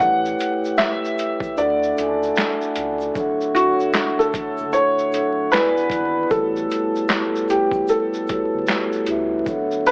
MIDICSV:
0, 0, Header, 1, 6, 480
1, 0, Start_track
1, 0, Key_signature, 2, "major"
1, 0, Tempo, 789474
1, 1914, Time_signature, 4, 2, 24, 8
1, 6029, End_track
2, 0, Start_track
2, 0, Title_t, "Felt piano"
2, 0, Program_c, 0, 0
2, 0, Note_on_c, 0, 78, 111
2, 473, Note_on_c, 0, 76, 101
2, 487, Note_off_c, 0, 78, 0
2, 960, Note_on_c, 0, 74, 83
2, 968, Note_off_c, 0, 76, 0
2, 1653, Note_off_c, 0, 74, 0
2, 2156, Note_on_c, 0, 66, 95
2, 2521, Note_off_c, 0, 66, 0
2, 2547, Note_on_c, 0, 69, 86
2, 2876, Note_on_c, 0, 73, 92
2, 2885, Note_off_c, 0, 69, 0
2, 3354, Note_on_c, 0, 71, 94
2, 3369, Note_off_c, 0, 73, 0
2, 3809, Note_off_c, 0, 71, 0
2, 3835, Note_on_c, 0, 69, 86
2, 4559, Note_on_c, 0, 67, 81
2, 4576, Note_off_c, 0, 69, 0
2, 4800, Note_on_c, 0, 69, 79
2, 4804, Note_off_c, 0, 67, 0
2, 5492, Note_off_c, 0, 69, 0
2, 5999, Note_on_c, 0, 71, 96
2, 6029, Note_off_c, 0, 71, 0
2, 6029, End_track
3, 0, Start_track
3, 0, Title_t, "Vibraphone"
3, 0, Program_c, 1, 11
3, 0, Control_c, 1, 64, 127
3, 0, Note_on_c, 1, 57, 79
3, 0, Note_on_c, 1, 64, 68
3, 2, Control_c, 1, 64, 0
3, 5, Note_on_c, 1, 67, 65
3, 12, Note_on_c, 1, 71, 68
3, 22, Note_on_c, 1, 73, 86
3, 119, Control_c, 1, 64, 127
3, 655, Note_off_c, 1, 57, 0
3, 660, Note_off_c, 1, 64, 0
3, 664, Note_off_c, 1, 67, 0
3, 668, Note_off_c, 1, 71, 0
3, 673, Note_off_c, 1, 73, 0
3, 948, Note_on_c, 1, 62, 74
3, 955, Note_on_c, 1, 69, 67
3, 961, Control_c, 1, 64, 0
3, 964, Note_on_c, 1, 74, 71
3, 973, Note_on_c, 1, 76, 67
3, 982, Note_on_c, 1, 78, 86
3, 1057, Control_c, 1, 64, 127
3, 1155, Note_off_c, 1, 62, 0
3, 1159, Note_off_c, 1, 69, 0
3, 1163, Note_off_c, 1, 74, 0
3, 1168, Note_off_c, 1, 76, 0
3, 1172, Note_off_c, 1, 78, 0
3, 1187, Note_on_c, 1, 62, 74
3, 1197, Note_on_c, 1, 69, 67
3, 1205, Note_on_c, 1, 74, 70
3, 1213, Note_on_c, 1, 76, 67
3, 1222, Note_on_c, 1, 80, 69
3, 1257, Note_off_c, 1, 80, 0
3, 1262, Note_on_c, 1, 81, 81
3, 1675, Note_off_c, 1, 62, 0
3, 1680, Note_off_c, 1, 69, 0
3, 1685, Note_off_c, 1, 74, 0
3, 1689, Note_off_c, 1, 76, 0
3, 1713, Note_off_c, 1, 81, 0
3, 1908, Note_on_c, 1, 62, 83
3, 1916, Note_on_c, 1, 69, 76
3, 1922, Control_c, 1, 64, 0
3, 1925, Note_on_c, 1, 73, 78
3, 1933, Note_on_c, 1, 76, 78
3, 1943, Note_on_c, 1, 78, 94
3, 2023, Control_c, 1, 64, 127
3, 2576, Note_off_c, 1, 62, 0
3, 2579, Note_off_c, 1, 69, 0
3, 2584, Note_off_c, 1, 73, 0
3, 2588, Note_off_c, 1, 76, 0
3, 2593, Note_off_c, 1, 78, 0
3, 3108, Note_on_c, 1, 62, 67
3, 3117, Note_on_c, 1, 69, 59
3, 3125, Note_on_c, 1, 73, 59
3, 3133, Note_on_c, 1, 76, 61
3, 3141, Note_on_c, 1, 78, 72
3, 3348, Note_on_c, 1, 64, 66
3, 3351, Note_off_c, 1, 62, 0
3, 3355, Note_off_c, 1, 69, 0
3, 3358, Note_on_c, 1, 71, 66
3, 3359, Note_off_c, 1, 73, 0
3, 3362, Control_c, 1, 64, 0
3, 3363, Note_off_c, 1, 76, 0
3, 3366, Note_off_c, 1, 78, 0
3, 3366, Note_on_c, 1, 74, 70
3, 3373, Note_on_c, 1, 78, 62
3, 3383, Note_on_c, 1, 80, 78
3, 3458, Control_c, 1, 64, 127
3, 3555, Note_off_c, 1, 64, 0
3, 3560, Note_off_c, 1, 71, 0
3, 3564, Note_off_c, 1, 74, 0
3, 3568, Note_off_c, 1, 78, 0
3, 3572, Note_off_c, 1, 80, 0
3, 3585, Note_on_c, 1, 64, 68
3, 3595, Note_on_c, 1, 71, 64
3, 3602, Note_on_c, 1, 74, 64
3, 3612, Note_on_c, 1, 78, 65
3, 3619, Note_on_c, 1, 83, 75
3, 3771, Note_off_c, 1, 64, 0
3, 3776, Note_off_c, 1, 71, 0
3, 3779, Note_off_c, 1, 74, 0
3, 3784, Note_off_c, 1, 78, 0
3, 3788, Note_off_c, 1, 83, 0
3, 3828, Note_on_c, 1, 57, 71
3, 3834, Note_on_c, 1, 64, 68
3, 3841, Control_c, 1, 64, 0
3, 3841, Note_on_c, 1, 66, 67
3, 3848, Note_on_c, 1, 67, 69
3, 3856, Note_on_c, 1, 71, 67
3, 3861, Note_on_c, 1, 73, 74
3, 3958, Control_c, 1, 64, 127
3, 4495, Note_off_c, 1, 57, 0
3, 4499, Note_off_c, 1, 64, 0
3, 4502, Note_off_c, 1, 66, 0
3, 4505, Note_off_c, 1, 67, 0
3, 4509, Note_off_c, 1, 71, 0
3, 4512, Note_off_c, 1, 73, 0
3, 5026, Note_on_c, 1, 57, 70
3, 5033, Note_on_c, 1, 64, 60
3, 5041, Note_on_c, 1, 66, 62
3, 5047, Note_on_c, 1, 67, 60
3, 5054, Note_on_c, 1, 71, 64
3, 5061, Note_on_c, 1, 73, 74
3, 5374, Note_off_c, 1, 57, 0
3, 5377, Note_off_c, 1, 64, 0
3, 5381, Note_off_c, 1, 66, 0
3, 5384, Note_off_c, 1, 67, 0
3, 5388, Note_off_c, 1, 71, 0
3, 5391, Note_off_c, 1, 73, 0
3, 5503, Note_on_c, 1, 57, 82
3, 5509, Note_on_c, 1, 64, 85
3, 5516, Note_on_c, 1, 66, 74
3, 5525, Note_on_c, 1, 67, 80
3, 5531, Note_on_c, 1, 71, 76
3, 5538, Note_on_c, 1, 76, 91
3, 5690, Note_off_c, 1, 57, 0
3, 5693, Note_off_c, 1, 64, 0
3, 5696, Note_off_c, 1, 66, 0
3, 5701, Note_off_c, 1, 67, 0
3, 5704, Note_off_c, 1, 71, 0
3, 5707, Note_off_c, 1, 76, 0
3, 5743, Note_on_c, 1, 62, 82
3, 5751, Note_on_c, 1, 69, 81
3, 5761, Control_c, 1, 64, 0
3, 5761, Note_on_c, 1, 73, 81
3, 5768, Note_on_c, 1, 76, 75
3, 5777, Note_on_c, 1, 78, 91
3, 5878, Control_c, 1, 64, 127
3, 6029, Note_off_c, 1, 62, 0
3, 6029, Note_off_c, 1, 69, 0
3, 6029, Note_off_c, 1, 73, 0
3, 6029, Note_off_c, 1, 76, 0
3, 6029, Note_off_c, 1, 78, 0
3, 6029, End_track
4, 0, Start_track
4, 0, Title_t, "Pipe organ"
4, 0, Program_c, 2, 19
4, 0, Note_on_c, 2, 57, 68
4, 0, Note_on_c, 2, 67, 78
4, 947, Note_off_c, 2, 67, 0
4, 954, Note_on_c, 2, 62, 68
4, 954, Note_on_c, 2, 64, 66
4, 954, Note_on_c, 2, 66, 79
4, 1896, Note_off_c, 2, 57, 0
4, 1904, Note_off_c, 2, 62, 0
4, 1904, Note_off_c, 2, 64, 0
4, 1904, Note_off_c, 2, 66, 0
4, 1917, Note_on_c, 2, 73, 60
4, 1918, Note_on_c, 2, 64, 59
4, 1919, Note_on_c, 2, 50, 68
4, 1919, Note_on_c, 2, 57, 62
4, 1920, Note_on_c, 2, 66, 70
4, 3341, Note_off_c, 2, 73, 0
4, 3342, Note_off_c, 2, 50, 0
4, 3342, Note_off_c, 2, 57, 0
4, 3342, Note_off_c, 2, 64, 0
4, 3360, Note_on_c, 2, 68, 66
4, 3361, Note_on_c, 2, 52, 65
4, 3361, Note_on_c, 2, 59, 60
4, 3363, Note_on_c, 2, 62, 58
4, 3818, Note_off_c, 2, 66, 0
4, 3825, Note_off_c, 2, 59, 0
4, 3832, Note_off_c, 2, 68, 0
4, 3833, Note_off_c, 2, 52, 0
4, 3833, Note_off_c, 2, 62, 0
4, 3837, Note_on_c, 2, 55, 73
4, 3837, Note_on_c, 2, 59, 59
4, 3839, Note_on_c, 2, 57, 65
4, 5736, Note_off_c, 2, 55, 0
4, 5737, Note_off_c, 2, 57, 0
4, 5751, Note_on_c, 2, 50, 66
4, 5752, Note_on_c, 2, 66, 76
4, 5753, Note_on_c, 2, 64, 63
4, 5754, Note_on_c, 2, 57, 59
4, 6029, Note_off_c, 2, 50, 0
4, 6029, Note_off_c, 2, 57, 0
4, 6029, Note_off_c, 2, 59, 0
4, 6029, Note_off_c, 2, 64, 0
4, 6029, Note_off_c, 2, 66, 0
4, 6029, End_track
5, 0, Start_track
5, 0, Title_t, "Sub bass"
5, 0, Program_c, 3, 38
5, 1, Note_on_c, 3, 33, 118
5, 210, Note_off_c, 3, 33, 0
5, 961, Note_on_c, 3, 38, 106
5, 1170, Note_off_c, 3, 38, 0
5, 1203, Note_on_c, 3, 37, 98
5, 1411, Note_off_c, 3, 37, 0
5, 1680, Note_on_c, 3, 37, 90
5, 1890, Note_off_c, 3, 37, 0
5, 1920, Note_on_c, 3, 26, 105
5, 2263, Note_off_c, 3, 26, 0
5, 2790, Note_on_c, 3, 30, 76
5, 2867, Note_off_c, 3, 30, 0
5, 3118, Note_on_c, 3, 26, 99
5, 3329, Note_off_c, 3, 26, 0
5, 3357, Note_on_c, 3, 28, 93
5, 3588, Note_on_c, 3, 32, 86
5, 3597, Note_off_c, 3, 28, 0
5, 3803, Note_off_c, 3, 32, 0
5, 3839, Note_on_c, 3, 33, 117
5, 4049, Note_off_c, 3, 33, 0
5, 5189, Note_on_c, 3, 31, 88
5, 5266, Note_off_c, 3, 31, 0
5, 5518, Note_on_c, 3, 37, 89
5, 5728, Note_off_c, 3, 37, 0
5, 5757, Note_on_c, 3, 26, 109
5, 6029, Note_off_c, 3, 26, 0
5, 6029, End_track
6, 0, Start_track
6, 0, Title_t, "Drums"
6, 0, Note_on_c, 9, 36, 114
6, 0, Note_on_c, 9, 82, 81
6, 4, Note_off_c, 9, 82, 0
6, 4, Note_on_c, 9, 82, 63
6, 59, Note_off_c, 9, 36, 0
6, 65, Note_off_c, 9, 82, 0
6, 154, Note_on_c, 9, 82, 50
6, 215, Note_off_c, 9, 82, 0
6, 238, Note_on_c, 9, 82, 52
6, 246, Note_off_c, 9, 82, 0
6, 246, Note_on_c, 9, 42, 74
6, 246, Note_on_c, 9, 82, 55
6, 307, Note_off_c, 9, 42, 0
6, 307, Note_off_c, 9, 82, 0
6, 388, Note_on_c, 9, 82, 46
6, 394, Note_off_c, 9, 82, 0
6, 394, Note_on_c, 9, 82, 47
6, 455, Note_off_c, 9, 82, 0
6, 470, Note_on_c, 9, 82, 76
6, 477, Note_off_c, 9, 82, 0
6, 477, Note_on_c, 9, 82, 75
6, 480, Note_on_c, 9, 38, 116
6, 481, Note_on_c, 9, 39, 90
6, 538, Note_off_c, 9, 82, 0
6, 541, Note_off_c, 9, 38, 0
6, 542, Note_off_c, 9, 39, 0
6, 637, Note_on_c, 9, 82, 51
6, 698, Note_off_c, 9, 82, 0
6, 717, Note_on_c, 9, 82, 62
6, 724, Note_off_c, 9, 82, 0
6, 724, Note_on_c, 9, 42, 74
6, 724, Note_on_c, 9, 82, 50
6, 785, Note_off_c, 9, 42, 0
6, 785, Note_off_c, 9, 82, 0
6, 853, Note_on_c, 9, 36, 87
6, 866, Note_on_c, 9, 82, 54
6, 870, Note_off_c, 9, 82, 0
6, 870, Note_on_c, 9, 82, 46
6, 914, Note_off_c, 9, 36, 0
6, 931, Note_off_c, 9, 82, 0
6, 957, Note_on_c, 9, 82, 75
6, 958, Note_off_c, 9, 82, 0
6, 958, Note_on_c, 9, 82, 64
6, 1019, Note_off_c, 9, 82, 0
6, 1113, Note_on_c, 9, 82, 50
6, 1174, Note_off_c, 9, 82, 0
6, 1198, Note_on_c, 9, 82, 52
6, 1205, Note_off_c, 9, 82, 0
6, 1205, Note_on_c, 9, 42, 69
6, 1205, Note_on_c, 9, 82, 53
6, 1266, Note_off_c, 9, 42, 0
6, 1266, Note_off_c, 9, 82, 0
6, 1354, Note_on_c, 9, 82, 48
6, 1356, Note_off_c, 9, 82, 0
6, 1356, Note_on_c, 9, 82, 49
6, 1417, Note_off_c, 9, 82, 0
6, 1433, Note_on_c, 9, 82, 60
6, 1441, Note_off_c, 9, 82, 0
6, 1441, Note_on_c, 9, 82, 67
6, 1448, Note_on_c, 9, 38, 110
6, 1449, Note_on_c, 9, 39, 85
6, 1501, Note_off_c, 9, 82, 0
6, 1509, Note_off_c, 9, 38, 0
6, 1510, Note_off_c, 9, 39, 0
6, 1590, Note_on_c, 9, 82, 48
6, 1651, Note_off_c, 9, 82, 0
6, 1674, Note_on_c, 9, 82, 52
6, 1675, Note_off_c, 9, 82, 0
6, 1675, Note_on_c, 9, 42, 74
6, 1675, Note_on_c, 9, 82, 49
6, 1736, Note_off_c, 9, 42, 0
6, 1736, Note_off_c, 9, 82, 0
6, 1823, Note_on_c, 9, 82, 51
6, 1832, Note_off_c, 9, 82, 0
6, 1832, Note_on_c, 9, 82, 35
6, 1892, Note_off_c, 9, 82, 0
6, 1916, Note_on_c, 9, 82, 77
6, 1918, Note_on_c, 9, 36, 101
6, 1921, Note_off_c, 9, 82, 0
6, 1921, Note_on_c, 9, 82, 60
6, 1978, Note_off_c, 9, 36, 0
6, 1982, Note_off_c, 9, 82, 0
6, 2073, Note_on_c, 9, 82, 50
6, 2133, Note_off_c, 9, 82, 0
6, 2158, Note_on_c, 9, 82, 48
6, 2165, Note_off_c, 9, 82, 0
6, 2165, Note_on_c, 9, 42, 65
6, 2165, Note_on_c, 9, 82, 51
6, 2226, Note_off_c, 9, 42, 0
6, 2226, Note_off_c, 9, 82, 0
6, 2306, Note_on_c, 9, 82, 39
6, 2312, Note_off_c, 9, 82, 0
6, 2312, Note_on_c, 9, 82, 42
6, 2373, Note_off_c, 9, 82, 0
6, 2390, Note_on_c, 9, 82, 66
6, 2394, Note_off_c, 9, 82, 0
6, 2394, Note_on_c, 9, 82, 73
6, 2397, Note_on_c, 9, 38, 103
6, 2399, Note_on_c, 9, 39, 89
6, 2455, Note_off_c, 9, 82, 0
6, 2458, Note_off_c, 9, 38, 0
6, 2459, Note_off_c, 9, 39, 0
6, 2556, Note_on_c, 9, 82, 44
6, 2617, Note_off_c, 9, 82, 0
6, 2635, Note_on_c, 9, 82, 57
6, 2638, Note_on_c, 9, 36, 91
6, 2643, Note_off_c, 9, 82, 0
6, 2643, Note_on_c, 9, 42, 69
6, 2643, Note_on_c, 9, 82, 45
6, 2699, Note_off_c, 9, 36, 0
6, 2704, Note_off_c, 9, 42, 0
6, 2704, Note_off_c, 9, 82, 0
6, 2782, Note_on_c, 9, 82, 54
6, 2843, Note_off_c, 9, 82, 0
6, 2872, Note_on_c, 9, 82, 70
6, 2878, Note_off_c, 9, 82, 0
6, 2878, Note_on_c, 9, 82, 61
6, 2939, Note_off_c, 9, 82, 0
6, 3031, Note_on_c, 9, 82, 49
6, 3092, Note_off_c, 9, 82, 0
6, 3114, Note_on_c, 9, 82, 50
6, 3125, Note_off_c, 9, 82, 0
6, 3125, Note_on_c, 9, 42, 71
6, 3125, Note_on_c, 9, 82, 54
6, 3185, Note_off_c, 9, 42, 0
6, 3185, Note_off_c, 9, 82, 0
6, 3354, Note_on_c, 9, 82, 63
6, 3359, Note_off_c, 9, 82, 0
6, 3359, Note_on_c, 9, 82, 62
6, 3369, Note_on_c, 9, 38, 95
6, 3370, Note_on_c, 9, 39, 85
6, 3419, Note_off_c, 9, 82, 0
6, 3430, Note_off_c, 9, 38, 0
6, 3431, Note_off_c, 9, 39, 0
6, 3509, Note_on_c, 9, 82, 45
6, 3570, Note_off_c, 9, 82, 0
6, 3585, Note_on_c, 9, 36, 89
6, 3594, Note_on_c, 9, 82, 46
6, 3595, Note_off_c, 9, 82, 0
6, 3595, Note_on_c, 9, 42, 70
6, 3595, Note_on_c, 9, 82, 50
6, 3646, Note_off_c, 9, 36, 0
6, 3656, Note_off_c, 9, 42, 0
6, 3656, Note_off_c, 9, 82, 0
6, 3834, Note_on_c, 9, 82, 74
6, 3836, Note_on_c, 9, 36, 104
6, 3840, Note_off_c, 9, 82, 0
6, 3840, Note_on_c, 9, 82, 62
6, 3897, Note_off_c, 9, 36, 0
6, 3900, Note_off_c, 9, 82, 0
6, 3990, Note_on_c, 9, 82, 49
6, 4051, Note_off_c, 9, 82, 0
6, 4075, Note_on_c, 9, 82, 51
6, 4083, Note_off_c, 9, 82, 0
6, 4083, Note_on_c, 9, 42, 68
6, 4083, Note_on_c, 9, 82, 51
6, 4143, Note_off_c, 9, 42, 0
6, 4143, Note_off_c, 9, 82, 0
6, 4227, Note_on_c, 9, 82, 42
6, 4230, Note_off_c, 9, 82, 0
6, 4230, Note_on_c, 9, 82, 43
6, 4291, Note_off_c, 9, 82, 0
6, 4305, Note_on_c, 9, 82, 73
6, 4312, Note_off_c, 9, 82, 0
6, 4312, Note_on_c, 9, 82, 80
6, 4315, Note_on_c, 9, 38, 112
6, 4316, Note_on_c, 9, 39, 95
6, 4372, Note_off_c, 9, 82, 0
6, 4376, Note_off_c, 9, 38, 0
6, 4377, Note_off_c, 9, 39, 0
6, 4472, Note_on_c, 9, 82, 52
6, 4533, Note_off_c, 9, 82, 0
6, 4551, Note_on_c, 9, 82, 55
6, 4560, Note_off_c, 9, 82, 0
6, 4560, Note_on_c, 9, 42, 67
6, 4560, Note_on_c, 9, 82, 49
6, 4621, Note_off_c, 9, 42, 0
6, 4621, Note_off_c, 9, 82, 0
6, 4691, Note_on_c, 9, 36, 84
6, 4697, Note_on_c, 9, 82, 50
6, 4751, Note_off_c, 9, 36, 0
6, 4758, Note_off_c, 9, 82, 0
6, 4788, Note_on_c, 9, 82, 80
6, 4794, Note_off_c, 9, 82, 0
6, 4794, Note_on_c, 9, 82, 65
6, 4855, Note_off_c, 9, 82, 0
6, 4948, Note_on_c, 9, 82, 51
6, 5008, Note_off_c, 9, 82, 0
6, 5029, Note_on_c, 9, 82, 48
6, 5042, Note_off_c, 9, 82, 0
6, 5042, Note_on_c, 9, 42, 72
6, 5042, Note_on_c, 9, 82, 49
6, 5044, Note_on_c, 9, 36, 94
6, 5103, Note_off_c, 9, 42, 0
6, 5103, Note_off_c, 9, 82, 0
6, 5105, Note_off_c, 9, 36, 0
6, 5270, Note_on_c, 9, 82, 61
6, 5274, Note_off_c, 9, 82, 0
6, 5274, Note_on_c, 9, 82, 64
6, 5285, Note_on_c, 9, 38, 101
6, 5286, Note_on_c, 9, 39, 80
6, 5335, Note_off_c, 9, 82, 0
6, 5345, Note_off_c, 9, 38, 0
6, 5347, Note_off_c, 9, 39, 0
6, 5426, Note_on_c, 9, 82, 47
6, 5487, Note_off_c, 9, 82, 0
6, 5511, Note_on_c, 9, 42, 68
6, 5511, Note_on_c, 9, 82, 54
6, 5572, Note_off_c, 9, 42, 0
6, 5572, Note_off_c, 9, 82, 0
6, 5754, Note_on_c, 9, 36, 112
6, 5754, Note_on_c, 9, 82, 81
6, 5755, Note_off_c, 9, 82, 0
6, 5755, Note_on_c, 9, 82, 63
6, 5815, Note_off_c, 9, 36, 0
6, 5816, Note_off_c, 9, 82, 0
6, 5906, Note_on_c, 9, 82, 52
6, 5966, Note_off_c, 9, 82, 0
6, 5994, Note_on_c, 9, 82, 47
6, 5998, Note_off_c, 9, 82, 0
6, 5998, Note_on_c, 9, 42, 66
6, 5998, Note_on_c, 9, 82, 53
6, 6029, Note_off_c, 9, 42, 0
6, 6029, Note_off_c, 9, 82, 0
6, 6029, End_track
0, 0, End_of_file